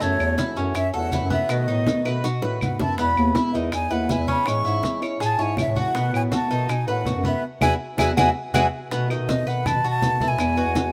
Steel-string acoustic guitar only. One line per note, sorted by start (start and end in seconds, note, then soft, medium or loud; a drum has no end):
0.01 0.56 C#3 medium
0.01 0.56 E3 medium
0.01 0.58 A3 medium
0.01 0.57 C#4 medium
0.01 0.57 F#4 medium
0.57 0.76 E3 medium
0.57 0.76 A3 medium
0.57 0.75 C#4 medium
0.57 0.75 F#4 medium
0.76 muted steel-string acoustic guitar stroke medium
0.94 1.12 E3 medium
0.94 1.13 A3 medium
0.94 1.13 C#4 medium
0.94 1.12 F#4 medium
1.13 1.49 E3 soft
1.13 1.49 A3 medium
1.13 1.50 C#4 soft
1.13 1.50 F#4 medium
1.50 2.05 B2 medium
1.50 2.05 D#3 medium
1.50 2.05 A3 medium
1.50 2.05 B3 medium
1.50 2.04 F#4 medium
2.05 2.24 D#3 medium
2.05 2.23 A3 medium
2.05 2.24 B3 medium
2.05 2.23 F#4 medium
2.24 muted steel-string acoustic guitar stroke medium
2.42 2.59 D#3 medium
2.42 2.60 A3 medium
2.42 2.60 B3 medium
2.42 2.60 F#4 medium
2.60 2.97 D#3 soft
2.60 2.98 A3 soft
2.60 2.98 B3 soft
2.60 2.98 F#4 soft
2.97 3.53 B2 medium
2.97 3.54 G#3 medium
2.97 3.53 B3 medium
2.97 3.53 E4 medium
3.53 3.71 D#3 medium
3.53 3.71 G#3 medium
3.53 3.71 B3 medium
3.53 3.71 E4 medium
3.72 muted steel-string acoustic guitar stroke medium
3.90 4.10 D#3 medium
3.90 4.08 G#3 medium
3.90 4.09 B3 medium
3.90 4.09 E4 medium
4.10 4.46 G#3 medium
4.10 4.47 B3 soft
4.10 4.47 E4 soft
4.47 5.02 E3 medium
4.47 5.02 G#3 medium
4.47 5.02 C#4 medium
4.47 5.00 E4 medium
5.02 5.19 G#3 soft
5.02 5.19 C#4 medium
5.02 5.20 E4 medium
5.20 muted steel-string acoustic guitar stroke medium
5.39 5.57 G#3 medium
5.39 5.57 C#4 medium
5.39 5.57 E4 medium
5.57 5.94 E3 soft
5.57 5.94 G#3 medium
5.57 5.95 C#4 medium
5.57 5.95 E4 medium
5.94 6.50 B2 medium
5.94 6.50 D#3 medium
5.94 6.50 A3 medium
5.94 6.51 B3 medium
5.94 6.50 F#4 medium
6.50 6.68 D#3 medium
6.50 6.68 A3 medium
6.50 6.68 B3 medium
6.50 6.68 F#4 medium
6.69 muted steel-string acoustic guitar stroke medium
6.87 7.03 D#3 medium
6.87 7.04 A3 medium
6.87 7.05 B3 medium
6.87 7.05 F#4 medium
7.05 7.42 D#3 soft
7.05 7.42 A3 soft
7.05 7.42 B3 medium
7.05 7.42 F#4 soft
7.61 7.73 F#3 medium
7.61 7.73 G#3 medium
7.61 7.73 B3 medium
7.97 8.10 F#3 medium
7.97 8.10 G#3 loud
7.97 8.10 B3 loud
8.16 8.29 F#3 medium
8.16 8.29 G#3 medium
8.16 8.29 B3 medium
8.54 8.66 F#3 medium
8.54 8.66 G#3 medium
8.54 8.66 B3 medium
8.90 9.09 B2 medium
8.90 9.09 D#3 medium
8.90 9.09 A3 medium
8.90 9.09 B3 medium
8.90 9.08 F#4 medium
9.09 9.65 D#3 medium
9.09 9.65 A3 medium
9.09 9.66 B3 medium
9.09 9.66 F#4 medium
9.65 muted steel-string acoustic guitar stroke medium
10.02 10.20 D#3 soft
10.02 10.20 A3 soft
10.02 10.20 B3 soft
10.02 10.19 F#4 medium
10.20 10.39 D#3 soft
10.20 10.39 A3 medium
10.20 10.39 B3 medium
10.20 10.38 F#4 medium
10.39 10.57 B2 medium
10.39 10.57 E3 medium
10.39 10.56 G#3 medium
10.39 10.56 B3 medium
10.39 10.55 F#4 medium
10.56 10.92 E3 medium
10.56 10.92 G#3 medium
10.56 10.92 B3 medium
10.56 10.92 F#4 medium